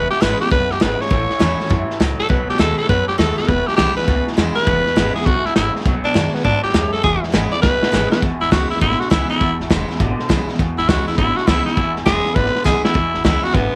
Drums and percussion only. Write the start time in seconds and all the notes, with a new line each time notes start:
0.12 snare
0.22 snare, hi-hat pedal
0.41 snare
0.46 snare
0.52 kick, snare
0.71 snare
0.81 snare, hi-hat pedal
1.01 snare
1.06 snare
1.11 kick, snare
1.30 snare
1.40 snare, hi-hat pedal
1.60 snare
1.66 snare
1.71 kick, snare
1.90 snare
2.01 snare, hi-hat pedal
2.20 snare
2.30 kick, snare
2.49 snare
2.54 snare
2.59 snare, hi-hat pedal
2.79 snare
2.84 snare
2.89 kick, snare
3.09 snare
3.19 snare, hi-hat pedal
3.38 snare
3.44 snare
3.48 kick, snare
3.68 snare
3.73 snare
3.78 snare, hi-hat pedal
3.98 snare
4.03 snare
4.08 kick, snare
4.27 snare
4.32 snare
4.38 snare, hi-hat pedal
4.57 snare
4.62 snare
4.67 kick, snare
4.86 snare
4.97 snare, hi-hat pedal
5.16 snare
5.21 snare
5.26 kick, snare
5.46 snare
5.56 snare, hi-hat pedal
5.75 snare
5.81 snare
5.85 kick, snare
6.05 snare
6.15 snare, hi-hat pedal
6.35 snare
6.40 snare
6.45 kick, snare
6.64 snare
6.69 snare
6.74 snare, hi-hat pedal
6.94 snare
7.04 kick, snare
7.23 snare
7.29 snare
7.34 snare, hi-hat pedal
7.53 snare
7.63 kick, snare
7.83 snare
7.93 snare, hi-hat pedal
8.12 snare
8.22 kick, snare
8.42 snare
8.52 kick, snare, hi-hat pedal
8.71 snare
8.76 snare
8.81 kick, snare
8.91 snare
9.01 snare
9.11 kick, snare, hi-hat pedal
9.31 snare
9.41 kick, snare
9.60 snare
9.71 kick, snare, hi-hat pedal
9.90 snare
9.95 snare
10.00 kick, snare
10.19 snare
10.30 kick, snare, hi-hat pedal
10.49 snare
10.54 snare
10.59 kick, snare
10.79 snare
10.89 kick, snare, hi-hat pedal
11.08 snare
11.13 snare
11.18 kick, snare
11.37 snare
11.48 kick, snare, hi-hat pedal
11.67 snare
11.77 kick, snare
11.96 snare
12.06 kick, snare, hi-hat pedal
12.25 snare
12.36 kick, snare
12.46 snare
12.55 snare
12.65 kick, snare, hi-hat pedal
12.85 snare
12.95 kick, snare
13.14 snare
13.25 kick, snare, hi-hat pedal
13.44 snare
13.50 snare
13.54 kick, snare